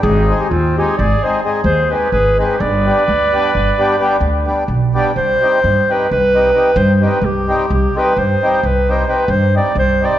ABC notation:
X:1
M:11/8
L:1/16
Q:1/4=130
K:none
V:1 name="Clarinet"
_A3 G F2 G2 d2 c2 z2 c2 B2 B2 B2 | d16- d2 z2 d2 | c6 B2 B6 c3/2 c/2 B2 G4 | G2 B2 c4 B2 c2 B2 c2 d2 c2 d2 |]
V:2 name="Trumpet"
_E3 E C2 E2 _A2 A2 z2 A2 G2 A2 G2 | B16- B2 z4 | z16 z6 | z16 z6 |]
V:3 name="Accordion"
z2 [_A,C_E_A]2 z2 [A,CEA]2 z2 [A,CEA]2 [A,CEA]2 z2 [A,CEA]2 z2 [A,CEA]2 | z2 [G,B,DG]2 z2 [G,B,DG]2 z2 [G,B,DG]2 [G,B,DG]2 z2 [G,B,DG]2 z2 [G,B,DG]2 | z2 [G,C_EG]2 z2 [G,CEG]2 z2 [G,CEG]2 [G,CEG]2 z2 [G,CEG]2 z2 [G,CEG]2 | z2 [G,C_EG]2 z2 [G,CEG]2 z2 [G,CEG]2 [G,CEG]2 z2 [G,CEG]2 z2 [G,CEG]2 |]
V:4 name="Upright bass" clef=bass
_A,,,4 _E,,4 A,,,2 z4 E,,4 A,,,4 | G,,,4 D,,4 G,,,2 z4 D,,4 B,,,4 | C,,2 z2 G,,2 z2 C,,6 G,,4 C,,4 | C,,2 z2 G,,2 z2 C,,6 G,,4 C,,4 |]